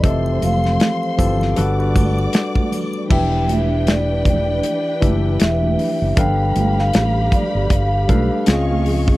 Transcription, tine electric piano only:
X:1
M:4/4
L:1/16
Q:"Swing 16ths" 1/4=78
K:Em
V:1 name="Tine electric piano"
[E,=F,CGA]4- [E,F,CGA] z [E,F,CGA]2 [G,D^FAB] [G,DFAB]6 z | [E,DEGe]6 z4 [E,DEGe]4- [E,DEGe] z | [G,DAB=f]6 z4 [G,DABf]2 [^C,^B,^C^E_e]3 z |]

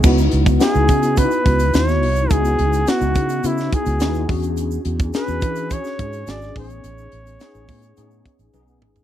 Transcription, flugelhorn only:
X:1
M:4/4
L:1/8
Q:1/4=106
K:C#m
V:1 name="Flugelhorn"
z2 G2 B2 c2 | G2 F2 E G2 z | z2 B2 c2 =d c- | c6 z2 |]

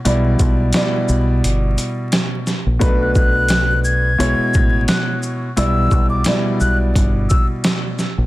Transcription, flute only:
X:1
M:4/4
L:1/16
Q:"Swing 16ths" 1/4=87
K:Glyd
V:1 name="Flute"
z16 | z f' f'4 ^g'6 f'2 z2 | e'3 d' z2 f' z3 e' z4 z |]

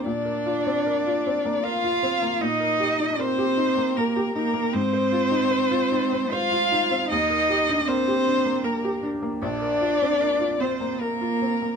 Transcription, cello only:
X:1
M:3/4
L:1/8
Q:1/4=77
K:Eb
V:1 name="Cello"
D4 F2 | E2 C2 B, B, | C4 F2 | E2 C2 B, z |
D3 C B,2 |]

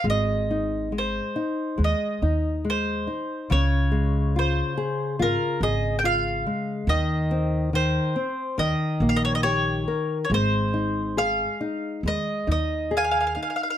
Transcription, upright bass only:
X:1
M:4/4
L:1/16
Q:1/4=70
K:Ab
V:1 name="Upright bass" clef=bass
A,,,8 E,, z E,,6 | D,,8 A,,, z A,,,6 | E,,8 E,, z B,,,6 | A,,,8 E,, z E,,6 |]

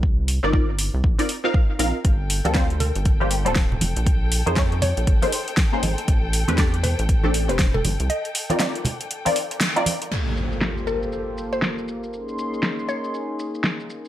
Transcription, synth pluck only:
X:1
M:4/4
L:1/16
Q:"Swing 16ths" 1/4=119
K:Gm
V:1 name="Synth pluck"
z16 | z6 B z4 c z4 | z6 _d4 z6 | z6 c z4 c2 A z2 |
e3 z12 z | z6 B z4 c z4 | z6 _d4 z6 |]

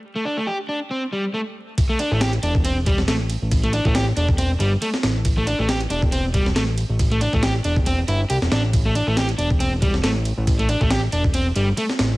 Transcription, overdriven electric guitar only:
X:1
M:4/4
L:1/16
Q:"Swing 16ths" 1/4=138
K:Am
V:1 name="Overdriven electric guitar"
z A, D A, G z D z C z G, z A, z3 | z A, D A, G z D z C z G, z A, z3 | z A, D A, G z D z C z G, z A, z3 | z A, D A, G z D z C z G, z A, z3 |
z A, D A, G z D z C z E z G z D z | z A, D A, G z D z C z G, z A, z3 | z A, D A, G z D z C z G, z A, z3 |]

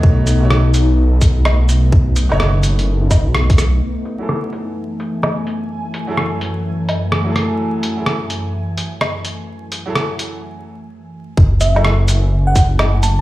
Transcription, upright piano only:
X:1
M:4/4
L:1/16
Q:"Swing 16ths" 1/4=127
K:F#dor
V:1 name="Upright piano"
[B,,A,Dc]3 [B,,A,Dc] z12 | z3 [B,,A,Dc] z12 | z3 [F,EGA] z12 | z3 [F,EGA] z8 z [F,EGA]3- |
[F,EGA]3 [F,EGA] z12 | z3 [F,EGA] z12 | z3 [F,EGA] z12 |]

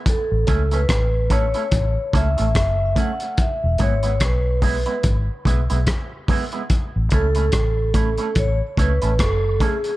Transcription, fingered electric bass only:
X:1
M:4/4
L:1/16
Q:"Swing 16ths" 1/4=72
K:A
V:1 name="Fingered electric bass" clef=bass
z A,,, C,,2 A,,,3 z A,,, z C,, A,,, F,,,2 z2 | z E,,, G,,,2 B,,,3 z G,,, z B,,, B,,, z4 | z A,,, C,,2 A,,,3 z A,,, z C,, A,,, F,,,2 z2 |]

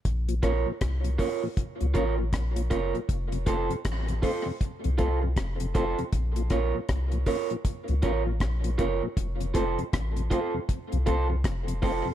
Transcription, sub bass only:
X:1
M:4/4
L:1/16
Q:"Swing 16ths" 1/4=79
K:Bbm
V:1 name="Sub bass" clef=bass
B,,,2 B,,, z C,,2 z3 D,, =A,,,2 B,,,2 G,,, z | F,,,2 F,,, z =A,,,2 z3 C,, C,,2 F,,,3 z | B,,,2 B,,, z C,,2 z3 D,, =A,,,2 B,,,2 G,,, z | F,,,2 F,,, z =A,,,2 z3 C,, C,,2 F,,,3 z |]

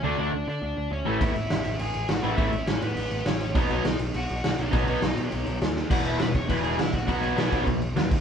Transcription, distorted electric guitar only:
X:1
M:4/4
L:1/8
Q:1/4=204
K:Bdor
V:1 name="Distorted electric guitar" clef=bass
[D,A,D] [D,A,D] z4 z [A,,E,A,] | [A,,E,A,] z6 [A,,E,A,] | [A,,E,A,] z6 z | [B,,F,B,] [B,,F,B,] z6 |
[B,,F,B,] [B,,F,B,] z6 | [E,,B,,E,]2 [E,,B,,] z [E,,B,,E,]2 [E,,B,,] z | [B,,F,B,]2 [B,,F,B,]2 [B,,F,] z [B,,F,] z |]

